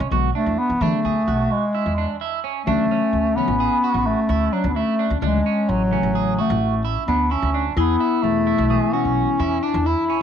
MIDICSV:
0, 0, Header, 1, 6, 480
1, 0, Start_track
1, 0, Tempo, 464037
1, 119, Time_signature, 11, 3, 24, 8
1, 10574, End_track
2, 0, Start_track
2, 0, Title_t, "Clean electric guitar"
2, 0, Program_c, 0, 27
2, 125, Note_on_c, 0, 66, 78
2, 307, Note_off_c, 0, 66, 0
2, 363, Note_on_c, 0, 62, 68
2, 730, Note_off_c, 0, 62, 0
2, 848, Note_on_c, 0, 62, 73
2, 1029, Note_off_c, 0, 62, 0
2, 1086, Note_on_c, 0, 68, 67
2, 1269, Note_off_c, 0, 68, 0
2, 1321, Note_on_c, 0, 66, 64
2, 1690, Note_off_c, 0, 66, 0
2, 1805, Note_on_c, 0, 64, 69
2, 1988, Note_off_c, 0, 64, 0
2, 2048, Note_on_c, 0, 62, 64
2, 2230, Note_off_c, 0, 62, 0
2, 2288, Note_on_c, 0, 64, 70
2, 2470, Note_off_c, 0, 64, 0
2, 2523, Note_on_c, 0, 61, 64
2, 2707, Note_off_c, 0, 61, 0
2, 2768, Note_on_c, 0, 62, 81
2, 2950, Note_off_c, 0, 62, 0
2, 3013, Note_on_c, 0, 61, 68
2, 3378, Note_off_c, 0, 61, 0
2, 3492, Note_on_c, 0, 61, 73
2, 3673, Note_off_c, 0, 61, 0
2, 3724, Note_on_c, 0, 68, 70
2, 3908, Note_off_c, 0, 68, 0
2, 3971, Note_on_c, 0, 66, 72
2, 4337, Note_off_c, 0, 66, 0
2, 4445, Note_on_c, 0, 64, 75
2, 4629, Note_off_c, 0, 64, 0
2, 4685, Note_on_c, 0, 62, 70
2, 4869, Note_off_c, 0, 62, 0
2, 4927, Note_on_c, 0, 64, 74
2, 5110, Note_off_c, 0, 64, 0
2, 5163, Note_on_c, 0, 62, 73
2, 5348, Note_off_c, 0, 62, 0
2, 5405, Note_on_c, 0, 62, 82
2, 5589, Note_off_c, 0, 62, 0
2, 5649, Note_on_c, 0, 61, 72
2, 6015, Note_off_c, 0, 61, 0
2, 6129, Note_on_c, 0, 61, 74
2, 6312, Note_off_c, 0, 61, 0
2, 6364, Note_on_c, 0, 68, 72
2, 6548, Note_off_c, 0, 68, 0
2, 6605, Note_on_c, 0, 66, 75
2, 6973, Note_off_c, 0, 66, 0
2, 7082, Note_on_c, 0, 64, 75
2, 7267, Note_off_c, 0, 64, 0
2, 7328, Note_on_c, 0, 62, 68
2, 7511, Note_off_c, 0, 62, 0
2, 7563, Note_on_c, 0, 64, 81
2, 7747, Note_off_c, 0, 64, 0
2, 7801, Note_on_c, 0, 62, 72
2, 7986, Note_off_c, 0, 62, 0
2, 8045, Note_on_c, 0, 68, 81
2, 8229, Note_off_c, 0, 68, 0
2, 8279, Note_on_c, 0, 64, 69
2, 8649, Note_off_c, 0, 64, 0
2, 8760, Note_on_c, 0, 64, 78
2, 8945, Note_off_c, 0, 64, 0
2, 9001, Note_on_c, 0, 68, 72
2, 9186, Note_off_c, 0, 68, 0
2, 9241, Note_on_c, 0, 66, 75
2, 9609, Note_off_c, 0, 66, 0
2, 9720, Note_on_c, 0, 64, 77
2, 9905, Note_off_c, 0, 64, 0
2, 9959, Note_on_c, 0, 62, 69
2, 10144, Note_off_c, 0, 62, 0
2, 10200, Note_on_c, 0, 64, 73
2, 10385, Note_off_c, 0, 64, 0
2, 10443, Note_on_c, 0, 61, 69
2, 10574, Note_off_c, 0, 61, 0
2, 10574, End_track
3, 0, Start_track
3, 0, Title_t, "Vibraphone"
3, 0, Program_c, 1, 11
3, 2766, Note_on_c, 1, 61, 80
3, 8040, Note_on_c, 1, 64, 100
3, 8204, Note_off_c, 1, 61, 0
3, 10574, Note_off_c, 1, 64, 0
3, 10574, End_track
4, 0, Start_track
4, 0, Title_t, "Bass clarinet"
4, 0, Program_c, 2, 71
4, 364, Note_on_c, 2, 57, 87
4, 608, Note_on_c, 2, 59, 100
4, 624, Note_off_c, 2, 57, 0
4, 849, Note_on_c, 2, 57, 85
4, 864, Note_off_c, 2, 59, 0
4, 1567, Note_on_c, 2, 56, 74
4, 1583, Note_off_c, 2, 57, 0
4, 2285, Note_off_c, 2, 56, 0
4, 2753, Note_on_c, 2, 57, 90
4, 3477, Note_on_c, 2, 59, 92
4, 3493, Note_off_c, 2, 57, 0
4, 4203, Note_on_c, 2, 57, 93
4, 4219, Note_off_c, 2, 59, 0
4, 4680, Note_on_c, 2, 54, 84
4, 4695, Note_off_c, 2, 57, 0
4, 4845, Note_on_c, 2, 59, 62
4, 4861, Note_off_c, 2, 54, 0
4, 4924, Note_on_c, 2, 57, 90
4, 4939, Note_off_c, 2, 59, 0
4, 5284, Note_off_c, 2, 57, 0
4, 5411, Note_on_c, 2, 56, 82
4, 5886, Note_on_c, 2, 54, 94
4, 5901, Note_off_c, 2, 56, 0
4, 6621, Note_on_c, 2, 57, 80
4, 6636, Note_off_c, 2, 54, 0
4, 7054, Note_off_c, 2, 57, 0
4, 7322, Note_on_c, 2, 59, 81
4, 7564, Note_on_c, 2, 61, 84
4, 7580, Note_off_c, 2, 59, 0
4, 7924, Note_off_c, 2, 61, 0
4, 8041, Note_on_c, 2, 59, 88
4, 8514, Note_on_c, 2, 57, 102
4, 8530, Note_off_c, 2, 59, 0
4, 9239, Note_on_c, 2, 61, 90
4, 9254, Note_off_c, 2, 57, 0
4, 9960, Note_on_c, 2, 62, 96
4, 9976, Note_off_c, 2, 61, 0
4, 10203, Note_on_c, 2, 64, 101
4, 10219, Note_off_c, 2, 62, 0
4, 10562, Note_off_c, 2, 64, 0
4, 10574, End_track
5, 0, Start_track
5, 0, Title_t, "Tine electric piano"
5, 0, Program_c, 3, 4
5, 118, Note_on_c, 3, 50, 62
5, 125, Note_on_c, 3, 54, 59
5, 128, Note_on_c, 3, 59, 69
5, 129, Note_on_c, 3, 56, 59
5, 287, Note_off_c, 3, 50, 0
5, 290, Note_off_c, 3, 54, 0
5, 291, Note_off_c, 3, 59, 0
5, 292, Note_off_c, 3, 56, 0
5, 839, Note_on_c, 3, 50, 56
5, 844, Note_on_c, 3, 54, 51
5, 845, Note_on_c, 3, 68, 51
5, 851, Note_on_c, 3, 59, 64
5, 1176, Note_off_c, 3, 50, 0
5, 1179, Note_off_c, 3, 54, 0
5, 1179, Note_off_c, 3, 68, 0
5, 1182, Note_off_c, 3, 59, 0
5, 2760, Note_on_c, 3, 49, 53
5, 2767, Note_on_c, 3, 52, 51
5, 2772, Note_on_c, 3, 54, 52
5, 2775, Note_on_c, 3, 57, 59
5, 3098, Note_off_c, 3, 49, 0
5, 3102, Note_off_c, 3, 52, 0
5, 3104, Note_off_c, 3, 54, 0
5, 3105, Note_off_c, 3, 57, 0
5, 3480, Note_on_c, 3, 49, 59
5, 3485, Note_on_c, 3, 52, 55
5, 3490, Note_on_c, 3, 54, 56
5, 3495, Note_on_c, 3, 57, 64
5, 3650, Note_off_c, 3, 49, 0
5, 3652, Note_off_c, 3, 52, 0
5, 3655, Note_off_c, 3, 54, 0
5, 3657, Note_off_c, 3, 57, 0
5, 5398, Note_on_c, 3, 49, 60
5, 5403, Note_on_c, 3, 52, 53
5, 5407, Note_on_c, 3, 54, 52
5, 5411, Note_on_c, 3, 57, 58
5, 5570, Note_off_c, 3, 49, 0
5, 5572, Note_off_c, 3, 52, 0
5, 5574, Note_off_c, 3, 54, 0
5, 5576, Note_off_c, 3, 57, 0
5, 6121, Note_on_c, 3, 49, 65
5, 6121, Note_on_c, 3, 52, 61
5, 6128, Note_on_c, 3, 54, 62
5, 6131, Note_on_c, 3, 57, 79
5, 6794, Note_off_c, 3, 49, 0
5, 6794, Note_off_c, 3, 52, 0
5, 6798, Note_off_c, 3, 54, 0
5, 6800, Note_off_c, 3, 57, 0
5, 8515, Note_on_c, 3, 47, 70
5, 8517, Note_on_c, 3, 52, 65
5, 8520, Note_on_c, 3, 68, 64
5, 8526, Note_on_c, 3, 59, 76
5, 8855, Note_off_c, 3, 47, 0
5, 8856, Note_off_c, 3, 52, 0
5, 8857, Note_off_c, 3, 68, 0
5, 8860, Note_off_c, 3, 59, 0
5, 9000, Note_on_c, 3, 47, 60
5, 9003, Note_on_c, 3, 52, 54
5, 9005, Note_on_c, 3, 56, 56
5, 9010, Note_on_c, 3, 59, 66
5, 9673, Note_off_c, 3, 47, 0
5, 9674, Note_off_c, 3, 52, 0
5, 9675, Note_off_c, 3, 56, 0
5, 9678, Note_off_c, 3, 59, 0
5, 10574, End_track
6, 0, Start_track
6, 0, Title_t, "Upright bass"
6, 0, Program_c, 4, 32
6, 0, Note_on_c, 4, 49, 86
6, 92, Note_off_c, 4, 49, 0
6, 118, Note_on_c, 4, 35, 79
6, 303, Note_off_c, 4, 35, 0
6, 479, Note_on_c, 4, 40, 74
6, 571, Note_off_c, 4, 40, 0
6, 720, Note_on_c, 4, 52, 75
6, 812, Note_off_c, 4, 52, 0
6, 837, Note_on_c, 4, 52, 85
6, 930, Note_off_c, 4, 52, 0
6, 1082, Note_on_c, 4, 38, 76
6, 1266, Note_off_c, 4, 38, 0
6, 1321, Note_on_c, 4, 35, 76
6, 1506, Note_off_c, 4, 35, 0
6, 1923, Note_on_c, 4, 40, 67
6, 2107, Note_off_c, 4, 40, 0
6, 2762, Note_on_c, 4, 38, 87
6, 2947, Note_off_c, 4, 38, 0
6, 3236, Note_on_c, 4, 38, 67
6, 3516, Note_off_c, 4, 38, 0
6, 3596, Note_on_c, 4, 33, 79
6, 3784, Note_off_c, 4, 33, 0
6, 4078, Note_on_c, 4, 33, 73
6, 4265, Note_off_c, 4, 33, 0
6, 4438, Note_on_c, 4, 38, 84
6, 4625, Note_off_c, 4, 38, 0
6, 4799, Note_on_c, 4, 38, 86
6, 4986, Note_off_c, 4, 38, 0
6, 5280, Note_on_c, 4, 38, 79
6, 5374, Note_off_c, 4, 38, 0
6, 5399, Note_on_c, 4, 38, 90
6, 5586, Note_off_c, 4, 38, 0
6, 5883, Note_on_c, 4, 33, 75
6, 6161, Note_off_c, 4, 33, 0
6, 6238, Note_on_c, 4, 33, 72
6, 6610, Note_off_c, 4, 33, 0
6, 6723, Note_on_c, 4, 33, 85
6, 7184, Note_off_c, 4, 33, 0
6, 7322, Note_on_c, 4, 38, 80
6, 7599, Note_off_c, 4, 38, 0
6, 7680, Note_on_c, 4, 38, 78
6, 7958, Note_off_c, 4, 38, 0
6, 8033, Note_on_c, 4, 40, 86
6, 8222, Note_off_c, 4, 40, 0
6, 8517, Note_on_c, 4, 40, 69
6, 8796, Note_off_c, 4, 40, 0
6, 8878, Note_on_c, 4, 35, 85
6, 9064, Note_off_c, 4, 35, 0
6, 9359, Note_on_c, 4, 35, 78
6, 9545, Note_off_c, 4, 35, 0
6, 9717, Note_on_c, 4, 40, 88
6, 9904, Note_off_c, 4, 40, 0
6, 10077, Note_on_c, 4, 40, 91
6, 10263, Note_off_c, 4, 40, 0
6, 10574, End_track
0, 0, End_of_file